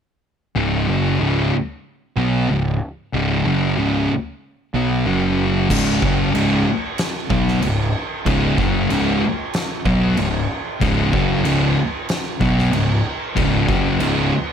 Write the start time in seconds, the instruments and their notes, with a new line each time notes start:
0.55 picked electric bass C#1, distorted electric guitar C#2 G#2 C#3
0.88 picked electric bass F#1, distorted electric guitar F#2 C#3 F#3
1.20 picked electric bass C#1, distorted electric guitar C#2 G#2 C#3
2.17 picked electric bass B1, distorted electric guitar B2 F#3 B3
2.49 picked electric bass C#1, distorted electric guitar C#2 G#2
3.13 picked electric bass C#1, distorted electric guitar C#2 G#2 C#3
3.45 picked electric bass F#1, distorted electric guitar F#2 C#3 F#3
3.77 picked electric bass C#1, distorted electric guitar C#2 G#2 C#3
4.74 picked electric bass B1, distorted electric guitar B2 F#3 B3
5.06 picked electric bass F#1, distorted electric guitar F#2 C#3 F#3
5.70 picked electric bass C#1, distorted electric guitar C#2 G#2 C#3, kick, crash
6.02 picked electric bass F#1, distorted electric guitar F#2 C#3 F#3, kick
6.34 picked electric bass C#1, distorted electric guitar C#2 G#2 C#3, crash
6.98 snare, crash
7.30 picked electric bass B1, distorted electric guitar B2 F#3 B3, kick
7.48 snare
7.62 picked electric bass C#1, distorted electric guitar C#2 G#2, crash
8.26 picked electric bass C#1, distorted electric guitar C#2 G#2 C#3, kick, crash
8.58 picked electric bass F#1, distorted electric guitar F#2 C#3 F#3, kick
8.90 picked electric bass C#1, distorted electric guitar C#2 G#2 C#3, crash
9.53 snare, crash
9.85 picked electric bass B1, distorted electric guitar B2 F#3 B3, kick
10.17 picked electric bass C#1, distorted electric guitar C#2 G#2, crash
10.80 picked electric bass C#1, distorted electric guitar C#2 G#2 C#3, kick, crash
11.12 picked electric bass F#1, distorted electric guitar F#2 C#3 F#3, kick
11.44 picked electric bass C#1, distorted electric guitar C#2 G#2 C#3, crash
12.09 snare, crash
12.40 picked electric bass B1, distorted electric guitar B2 F#3 B3, kick
12.59 snare
12.72 picked electric bass C#1, distorted electric guitar C#2 G#2, crash
13.35 picked electric bass C#1, distorted electric guitar C#2 G#2 C#3, kick, crash
13.67 picked electric bass F#1, distorted electric guitar F#2 C#3 F#3, kick
13.99 picked electric bass C#1, distorted electric guitar C#2 G#2 C#3, crash